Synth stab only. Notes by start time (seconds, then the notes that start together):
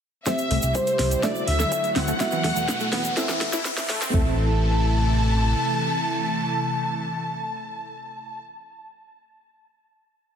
0.27 C4 G4 C5 E5
1.23 D4 F#4 A4 E5
2.20 B3 E4 F#4 E5
3.17 C4 E4 A4 E5
4.14 C4 E4 A4 E5